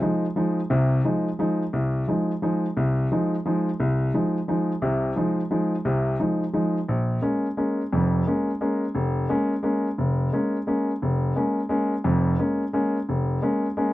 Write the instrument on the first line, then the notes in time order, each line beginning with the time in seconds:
grand piano
0.01 F3 G#3 D#4
0.36 F3 G#3 D#4
0.70 C2 C3
1.04 F3 G#3 D#4
1.39 F3 G#3 D#4
1.73 C2
2.08 F3 G#3 D#4
2.42 F3 G#3 D#4
2.77 C2
3.12 F3 G#3 D#4
3.46 F3 G#3 D#4
3.80 C2
4.14 F3 G#3 D#4
4.48 F3 G#3 D#4
4.82 C2 C3
5.16 F3 G#3 D#4
5.51 F3 G#3 D#4
5.85 C2 C3
6.20 F3 G#3 D#4
6.53 F3 G#3 D#4
6.88 A#1
7.22 G#3 A#3 C#4
7.57 G#3 A#3 C#4
7.92 F1 F2
8.27 G#3 A#3 C#4
8.61 G#3 A#3 C#4
8.95 F1
9.29 G#3 A#3 C#4
9.63 G#3 A#3 C#4
9.98 F1
10.33 G#3 A#3 C#4
10.67 G#3 A#3 C#4
11.02 F1
11.36 G#3 A#3 C#4
11.69 G#3 A#3 C#4
12.04 F1 F2
12.39 G#3 A#3 C#4
12.73 G#3 A#3 C#4
13.09 F1
13.42 G#3 A#3 C#4
13.77 G#3 A#3 C#4